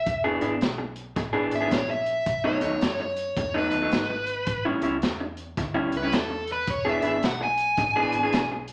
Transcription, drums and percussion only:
0.06 kick, closed hi-hat
0.41 closed hi-hat
0.61 snare, closed hi-hat
0.96 closed hi-hat
1.16 kick, snare, closed hi-hat
1.51 closed hi-hat
1.71 kick, snare, closed hi-hat
2.06 closed hi-hat
2.26 kick, closed hi-hat
2.61 closed hi-hat
2.81 snare, closed hi-hat
3.16 closed hi-hat
3.37 kick, closed hi-hat
3.71 closed hi-hat
3.92 snare, closed hi-hat
4.26 closed hi-hat
4.47 kick, closed hi-hat
4.82 closed hi-hat
5.02 snare, closed hi-hat
5.37 closed hi-hat
5.57 kick, snare, closed hi-hat
5.92 closed hi-hat
6.12 snare, closed hi-hat
6.47 closed hi-hat
6.67 kick, closed hi-hat
7.02 closed hi-hat
7.23 snare, closed hi-hat
7.57 closed hi-hat
7.77 kick, snare, closed hi-hat
8.12 closed hi-hat
8.33 snare, closed hi-hat
8.68 closed hi-hat

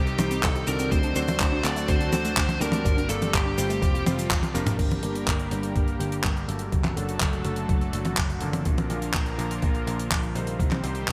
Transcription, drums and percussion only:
0.07 closed hi-hat
0.18 closed hi-hat, high tom, cabasa
0.31 closed hi-hat, cabasa
0.43 kick, clap, closed hi-hat, cabasa
0.56 closed hi-hat
0.67 closed hi-hat, cabasa
0.79 closed hi-hat, cabasa
0.92 kick, closed hi-hat, cabasa
1.03 closed hi-hat
1.16 closed hi-hat, cabasa
1.28 closed hi-hat, high tom, cabasa
1.40 kick, clap, closed hi-hat, cabasa
1.64 clap, closed hi-hat, cabasa
1.76 closed hi-hat, cabasa
1.88 kick, closed hi-hat, cabasa
2.01 closed hi-hat
2.13 closed hi-hat, high tom, cabasa
2.25 closed hi-hat, cabasa
2.37 kick, clap, closed hi-hat, cabasa
2.49 closed hi-hat, high tom
2.61 closed hi-hat, cabasa
2.72 closed hi-hat, high tom, cabasa
2.85 kick, closed hi-hat, cabasa
2.98 closed hi-hat
3.09 closed hi-hat, cabasa
3.22 closed hi-hat, high tom, cabasa
3.34 kick, clap, closed hi-hat, cabasa
3.58 closed hi-hat, cabasa
3.70 closed hi-hat, cabasa
3.82 kick, closed hi-hat, cabasa
3.95 closed hi-hat
4.06 closed hi-hat, high tom, cabasa
4.19 closed hi-hat, cabasa
4.30 kick, clap, closed hi-hat, high tom, cabasa
4.43 closed hi-hat, high tom
4.55 closed hi-hat, cabasa
4.66 closed hi-hat, mid tom, cabasa
4.79 kick, closed hi-hat, crash
4.91 closed hi-hat, high tom
5.03 closed hi-hat
5.15 closed hi-hat
5.27 kick, clap, closed hi-hat
5.39 closed hi-hat
5.51 closed hi-hat
5.63 closed hi-hat
5.76 kick, closed hi-hat
5.88 closed hi-hat
6.00 closed hi-hat
6.12 closed hi-hat
6.24 kick, clap, closed hi-hat
6.37 closed hi-hat
6.49 closed hi-hat
6.59 closed hi-hat
6.72 kick, closed hi-hat
6.84 clap, closed hi-hat, high tom
6.97 closed hi-hat
7.09 closed hi-hat
7.20 kick, clap, closed hi-hat
7.33 closed hi-hat
7.45 closed hi-hat
7.56 closed hi-hat
7.69 kick, closed hi-hat
7.81 closed hi-hat
7.93 closed hi-hat
8.05 closed hi-hat, high tom
8.17 kick, clap, closed hi-hat
8.30 closed hi-hat
8.41 closed hi-hat
8.53 closed hi-hat, high tom
8.65 kick, closed hi-hat
8.78 closed hi-hat, high tom
8.90 closed hi-hat
9.02 closed hi-hat
9.14 kick, clap, closed hi-hat
9.26 closed hi-hat
9.39 closed hi-hat
9.51 closed hi-hat
9.62 kick, closed hi-hat
9.75 closed hi-hat
9.87 closed hi-hat
9.99 closed hi-hat
10.11 kick, clap, closed hi-hat
10.23 closed hi-hat
10.35 closed hi-hat
10.47 closed hi-hat
10.60 kick, closed hi-hat
10.71 clap, closed hi-hat, high tom
10.84 closed hi-hat
10.95 closed hi-hat
11.08 kick, clap, closed hi-hat

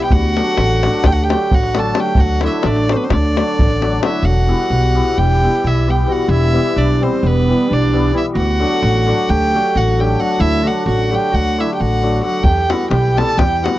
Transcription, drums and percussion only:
0.01 davul high
0.10 davul low
0.24 davul high
0.37 davul high
0.47 davul high
0.57 davul high
0.83 davul high
0.93 davul high
1.04 davul high, davul low
1.30 davul high
1.51 davul low
1.63 davul high
1.75 davul high
1.95 davul high
2.06 davul high
2.15 davul low
2.41 davul high
2.53 davul high
2.63 davul high
2.76 davul high
2.89 davul high
3.10 davul high, davul low
3.25 davul high
3.37 davul high
3.59 davul low
3.70 davul high
3.82 davul high
4.03 davul high
4.14 davul high
12.44 davul low
12.57 davul high
12.70 davul high
12.81 davul high
12.91 davul high
13.18 davul high
13.29 davul high
13.39 davul high, davul low
13.66 davul high

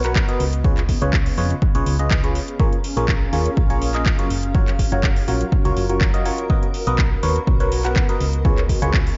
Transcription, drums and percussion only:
0.04 clap, closed hi-hat
0.16 kick, clap
0.29 closed hi-hat
0.40 open hi-hat
0.53 closed hi-hat
0.64 kick
0.77 clap, closed hi-hat
0.89 kick, open hi-hat
1.02 closed hi-hat
1.13 kick, clap
1.26 open hi-hat
1.38 open hi-hat
1.50 closed hi-hat
1.62 kick
1.75 closed hi-hat
1.86 open hi-hat
1.99 closed hi-hat
2.11 kick, clap
2.24 closed hi-hat
2.35 open hi-hat
2.48 closed hi-hat
2.60 kick
2.73 closed hi-hat
2.84 open hi-hat
2.97 closed hi-hat
3.08 kick, clap
3.33 open hi-hat
3.46 closed hi-hat
3.57 kick
3.70 closed hi-hat
3.82 open hi-hat
3.94 clap, closed hi-hat
4.06 kick, clap
4.19 closed hi-hat
4.30 open hi-hat
4.43 closed hi-hat
4.55 kick
4.68 clap, closed hi-hat
4.79 kick, open hi-hat
4.92 closed hi-hat
5.03 kick, clap
5.16 open hi-hat
5.28 open hi-hat
5.41 closed hi-hat
5.52 kick
5.65 closed hi-hat
5.77 open hi-hat
5.89 closed hi-hat
6.01 kick, clap
6.14 closed hi-hat
6.25 open hi-hat
6.38 closed hi-hat
6.50 kick
6.63 closed hi-hat
6.74 open hi-hat
6.87 closed hi-hat
6.99 kick, clap
7.23 open hi-hat
7.36 closed hi-hat
7.47 kick
7.60 closed hi-hat
7.72 open hi-hat
7.85 clap, closed hi-hat
7.96 kick, clap
8.09 closed hi-hat
8.21 open hi-hat
8.33 closed hi-hat
8.45 kick
8.58 clap, closed hi-hat
8.69 kick, open hi-hat
8.82 closed hi-hat
8.94 kick, clap
9.07 open hi-hat

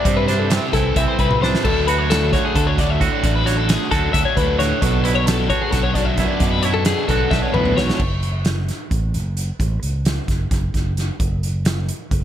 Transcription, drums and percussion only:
0.05 kick, closed hi-hat
0.28 snare, closed hi-hat
0.50 snare, closed hi-hat
0.73 kick, snare, closed hi-hat
0.96 kick, closed hi-hat
1.19 kick, closed hi-hat
1.31 high tom
1.43 snare
1.55 snare
1.65 kick, crash
1.88 closed hi-hat
2.11 snare, closed hi-hat
2.33 kick, snare, closed hi-hat
2.56 kick, closed hi-hat
2.78 kick, snare, closed hi-hat
3.01 kick, closed hi-hat
3.24 kick, closed hi-hat
3.47 snare, closed hi-hat
3.69 snare, closed hi-hat
3.92 kick, snare, closed hi-hat
4.14 kick, closed hi-hat
4.37 kick, closed hi-hat
4.60 snare, closed hi-hat
4.82 kick, closed hi-hat
5.05 closed hi-hat
5.27 snare, closed hi-hat
5.50 kick, closed hi-hat
5.72 kick, snare, closed hi-hat
5.95 kick, snare, closed hi-hat
6.17 kick, snare, closed hi-hat
6.40 kick, closed hi-hat
6.63 closed hi-hat
6.85 snare, closed hi-hat
7.09 kick, snare, closed hi-hat
7.31 kick, snare
7.54 mid tom
7.65 mid tom
7.78 snare
7.89 snare
7.99 kick, crash
8.23 closed hi-hat
8.45 snare, closed hi-hat
8.68 snare, closed hi-hat
8.91 kick, closed hi-hat
9.14 closed hi-hat
9.37 closed hi-hat
9.60 kick, closed hi-hat
9.83 closed hi-hat
10.05 snare, closed hi-hat
10.28 kick, snare, closed hi-hat
10.51 kick, snare, closed hi-hat
10.74 kick, snare, closed hi-hat
10.97 snare, closed hi-hat
11.20 kick, closed hi-hat
11.43 closed hi-hat
11.65 snare, closed hi-hat
11.89 closed hi-hat
12.11 kick, closed hi-hat

